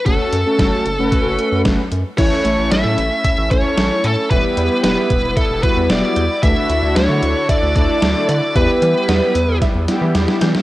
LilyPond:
<<
  \new Staff \with { instrumentName = "Lead electric guitar" } { \time 4/4 \key e \dorian \tempo 4 = 113 a'2. r4 | cis''4 e''4 e''8 cis''4 a'8 | b'4 b'4 a'8 b'8 d''4 | e''4 cis''4 d''8 d''4 d''8 |
b'2 r2 | }
  \new Staff \with { instrumentName = "Analog polysynth" } { \time 4/4 \key e \dorian <a cis' fis' a'>8 r16 <a cis' fis' a'>8. r16 <a cis' fis' b'>4. r8. | <a cis' e' a'>4. r4 <a cis' e' a'>4~ <a cis' e' a'>16 r16 | <g b e' g'>4. r4 <g b e' fis'>4~ <g b e' fis'>16 r16 | <a d' e' fis'>4. r4 <a d' e' a'>4~ <a d' e' a'>16 r16 |
<g b e' g'>4. r4 <g b e' g'>4~ <g b e' g'>16 r16 | }
  \new Staff \with { instrumentName = "Synth arpeggio sound" } { \time 4/4 \key e \dorian r1 | e8 a8 cis'8 r8 e''8 r4 a'''8 | e8 g8 b8 r8 e''8 r4 g'''8 | e8 a8 d'8 r8 e''8 r4 fis'''8 |
e8 g8 b8 r8 e''8 r4 g'''8 | }
  \new Staff \with { instrumentName = "Analog synth pad" } { \time 4/4 \key e \dorian << { r1 | e'1~ | e'1 | <d d' a'>1 |
r1 | } \\ { r1 | <a cis'>1 | <g b>1 | fis'1 |
<g b>1 | } >> }
  \new Staff \with { instrumentName = "Analog synth bass" } { \clef bass \time 4/4 \key e \dorian fis,,16 r16 fis,16 r16 fis,,16 r16 fis,,16 fis,,16 r16 fis,,16 r16 fis,16 fis,,16 r16 fis,16 r16 | a,,16 r16 a,,16 a,,16 a,,16 a,16 a,,16 r8 a,,16 a,,16 r16 a,,16 r16 a,16 r16 | e,,16 r16 e,16 r16 e,,16 r16 e,,16 e,,16 r16 e,,16 r16 e,16 e,,16 r16 e,16 r16 | d,16 r16 d,16 d,16 d,16 d16 d,16 r8 d,16 d,16 r16 d,16 r16 d16 r16 |
e,16 r16 e16 r16 e,16 r16 e,16 e,16 r16 e,16 r16 e16 e,16 r16 e16 r16 | }
  \new DrumStaff \with { instrumentName = "Drums" } \drummode { \time 4/4 <hh bd>8 hh8 <hh bd sn>8 hh8 <hh bd>8 hh8 <hh bd sn>8 hh8 | <cymc hh bd>8 hh8 <hh sn>8 hh8 <hh bd>8 <hh bd>8 <hh sn>8 hh8 | <hh bd>8 hh8 <hh sn>8 <hh bd>8 <hh bd>8 <hh bd>8 <hh sn>8 hh8 | <hh bd>8 hh8 <hh sn>8 hh8 <hh bd>8 <hh bd>8 <hh sn>8 hh8 |
<hh bd>8 hh8 <hh sn>8 hh8 <hh bd sn>8 <hh sn>8 <hh sn>16 sn16 <hh sn>16 sn16 | }
>>